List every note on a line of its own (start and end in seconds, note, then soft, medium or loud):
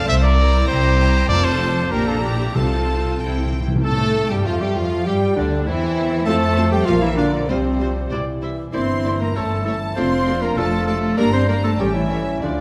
0.08 0.61 C2 medium
0.08 0.23 C5 medium
0.08 0.15 E5 loud
0.22 0.68 A#4 medium
0.22 0.67 D5 loud
0.38 0.97 C4 medium
0.38 0.97 E4 medium
0.38 0.98 A#5 medium
0.68 1.22 C2 medium
0.68 1.28 G4 medium
0.68 1.28 C5 loud
0.99 1.28 C4 medium
0.99 1.29 E4 medium
0.99 1.29 A#5 medium
1.29 1.88 F1 medium
1.29 1.88 F2 medium
1.29 1.88 C4 medium
1.29 1.88 F4 medium
1.29 1.45 A#4 loud
1.29 1.46 D5 loud
1.29 1.88 A5 medium
1.44 1.91 A4 medium
1.44 1.93 C5 medium
1.91 2.55 A#1 medium
1.91 2.56 A#2 medium
1.91 2.55 D4 medium
1.91 2.07 G4 medium
1.91 2.54 G4 medium
1.91 2.09 A#4 medium
1.91 2.54 A#5 medium
2.07 2.23 F4 medium
2.07 2.23 A4 medium
2.23 2.55 E4 medium
2.23 2.57 G4 medium
2.55 3.19 C2 medium
2.55 3.19 C3 medium
2.55 3.16 C3 medium
2.55 3.19 C4 medium
2.55 3.53 F4 medium
2.55 3.21 F4 medium
2.55 3.53 A4 medium
2.55 3.20 A5 medium
3.19 3.63 C2 medium
3.19 3.63 C3 medium
3.19 3.27 C3 soft
3.19 3.64 C4 soft
3.19 3.64 E4 soft
3.19 3.64 G5 soft
3.28 3.35 C3 soft
3.36 3.43 C3 soft
3.45 3.51 C3 soft
3.53 3.59 C3 medium
3.60 3.67 C3 medium
3.68 3.75 C3 medium
3.76 3.83 C3 medium
3.84 4.27 A2 medium
3.84 4.28 A3 medium
3.84 4.27 A4 medium
3.84 4.27 A5 medium
3.84 4.28 A5 medium
4.31 4.46 G2 medium
4.31 4.46 G3 medium
4.31 4.46 G4 medium
4.31 4.47 G4 medium
4.31 4.46 G5 medium
4.45 4.61 F2 medium
4.45 4.60 F3 medium
4.45 4.61 F3 medium
4.45 5.03 A3 medium
4.45 4.60 F4 medium
4.45 4.63 F4 medium
4.45 4.61 F5 medium
4.45 4.52 F5 medium
4.60 4.77 G2 medium
4.60 4.75 G3 medium
4.60 4.76 G3 medium
4.60 4.77 G3 medium
4.60 4.76 G4 medium
4.60 4.75 G4 medium
4.60 4.67 G5 medium
4.60 4.76 G5 medium
4.75 5.07 F2 medium
4.75 5.07 F3 medium
4.75 5.06 F4 medium
4.75 5.07 F5 medium
5.05 5.15 G2 medium
5.05 5.36 G3 medium
5.05 5.37 G3 medium
5.05 5.69 G3 medium
5.05 5.14 G4 medium
5.05 5.35 G4 medium
5.05 5.37 G5 medium
5.35 5.66 D2 medium
5.35 5.66 D3 medium
5.35 5.45 D3 medium
5.35 5.67 D3 medium
5.35 5.68 D4 medium
5.35 5.66 D4 medium
5.35 5.66 D5 medium
5.35 5.46 D5 medium
5.66 6.26 E2 medium
5.66 6.24 E3 medium
5.66 6.25 E3 medium
5.66 6.26 E3 medium
5.66 6.26 C4 medium
5.66 6.25 E4 medium
5.66 6.25 E5 medium
6.26 6.80 F2 medium
6.26 6.82 A3 medium
6.26 6.71 A3 medium
6.26 6.86 A3 medium
6.26 6.34 C4 medium
6.26 6.34 F4 medium
6.26 6.70 A4 medium
6.26 6.83 C5 medium
6.26 6.34 A5 medium
6.26 6.71 A5 loud
6.26 6.71 A5 medium
6.56 6.64 C4 medium
6.56 6.64 F4 medium
6.56 6.65 A5 medium
6.71 6.87 G3 medium
6.71 6.87 G4 medium
6.71 6.86 G5 medium
6.71 6.87 G5 medium
6.85 7.42 A#1 medium
6.85 8.11 F3 medium
6.85 6.93 F3 medium
6.85 6.94 A#3 medium
6.85 7.51 A#3 medium
6.85 7.01 F4 medium
6.85 6.95 F4 medium
6.85 7.49 A#4 medium
6.85 7.02 F5 medium
6.85 6.96 F5 medium
7.02 7.17 E3 medium
7.02 7.09 E4 medium
7.02 7.18 E5 medium
7.17 7.49 D3 medium
7.17 7.25 A#3 medium
7.17 7.31 D4 medium
7.17 7.25 F4 medium
7.17 7.48 D5 medium
7.17 7.25 D5 medium
7.17 7.26 F5 medium
7.48 8.04 C2 medium
7.48 8.11 C3 medium
7.48 7.57 G3 medium
7.48 8.43 G3 medium
7.48 8.10 C4 medium
7.48 7.57 F4 medium
7.48 8.41 G4 medium
7.48 8.11 C5 medium
7.48 7.57 C5 medium
7.48 8.10 C5 medium
7.80 7.88 G3 soft
7.80 7.88 F4 soft
7.80 7.89 C5 soft
8.10 8.67 C2 medium
8.10 9.97 E3 medium
8.10 8.19 G3 soft
8.10 8.18 E4 soft
8.10 8.18 C5 soft
8.10 8.26 D5 medium
8.42 8.50 G3 soft
8.42 8.50 E4 soft
8.42 8.50 C5 soft
8.42 8.57 E5 soft
8.73 9.29 G1 medium
8.73 8.81 A#3 soft
8.73 9.17 C4 medium
8.73 9.32 D4 soft
8.73 8.81 E4 medium
8.73 9.31 E4 medium
8.73 9.22 C5 medium
8.73 8.81 D5 soft
8.73 9.17 C6 medium
9.04 9.12 A#3 soft
9.04 9.12 E4 soft
9.04 9.13 D5 soft
9.20 9.26 A#3 soft
9.20 9.37 A#4 medium
9.20 9.26 A#5 medium
9.20 9.36 A#5 medium
9.35 9.90 G1 medium
9.35 9.43 A3 medium
9.35 9.65 A3 medium
9.35 9.97 C#4 soft
9.35 9.43 E4 medium
9.35 9.98 E4 medium
9.35 9.64 A4 medium
9.35 9.44 C#5 soft
9.35 9.65 A5 medium
9.65 9.74 A3 soft
9.65 9.74 A3 medium
9.65 9.74 E4 soft
9.65 9.79 A4 medium
9.65 9.75 C#5 soft
9.65 9.96 A5 medium
9.96 10.50 F1 medium
9.96 11.17 F3 medium
9.96 10.04 A3 medium
9.96 10.41 C4 medium
9.96 11.15 D4 medium
9.96 10.04 F4 medium
9.96 11.16 F4 medium
9.96 10.43 C5 medium
9.96 10.04 D5 medium
9.96 10.42 C6 medium
10.27 10.35 A3 medium
10.27 10.35 F4 medium
10.27 10.36 D5 soft
10.42 10.57 A#3 medium
10.42 10.58 A#4 medium
10.42 10.57 A#5 medium
10.56 11.11 F1 medium
10.56 10.65 A3 medium
10.56 10.87 A3 medium
10.56 10.65 F4 medium
10.56 10.86 A4 medium
10.56 10.64 D5 medium
10.56 10.86 A5 medium
10.56 10.64 A5 medium
10.87 10.95 A3 medium
10.87 11.17 A3 medium
10.87 10.95 F4 medium
10.87 11.17 A4 medium
10.87 10.96 D5 medium
10.87 10.94 A5 medium
10.87 10.95 A5 medium
11.17 11.72 G1 medium
11.17 11.75 G3 medium
11.17 11.26 G3 medium
11.17 11.33 A#3 medium
11.17 11.77 D4 medium
11.17 11.75 D4 medium
11.17 11.32 A#4 medium
11.17 11.26 A#4 medium
11.17 11.25 D5 medium
11.17 11.32 A#5 medium
11.32 11.48 C4 medium
11.32 11.48 C5 medium
11.32 11.47 C6 medium
11.32 11.48 C6 medium
11.47 11.57 G3 medium
11.47 11.64 A#3 medium
11.47 11.55 A#4 medium
11.47 11.57 A#4 medium
11.47 11.56 D5 medium
11.47 11.63 A#5 medium
11.63 11.79 A3 medium
11.63 11.70 A4 medium
11.63 11.79 A5 medium
11.78 12.34 A1 medium
11.78 12.41 G3 medium
11.78 11.86 G3 medium
11.78 11.88 G3 medium
11.78 12.42 C#4 medium
11.78 12.43 C#4 medium
11.78 11.94 G4 medium
11.78 11.88 A4 medium
11.78 11.87 C#5 medium
11.78 11.94 G5 medium
11.93 12.41 E3 medium
11.93 12.44 E4 medium
11.93 12.41 E5 medium
12.10 12.18 G3 soft
12.10 12.18 A4 soft
12.10 12.18 C#5 soft
12.41 12.61 D2 medium
12.41 12.61 D3 soft
12.41 12.50 F3 soft
12.41 12.61 F3 soft
12.41 12.61 D4 soft
12.41 12.61 D4 medium
12.41 12.61 F4 soft
12.41 12.50 A4 soft
12.41 12.61 D5 soft
12.41 12.50 D5 soft
12.41 12.61 D5 medium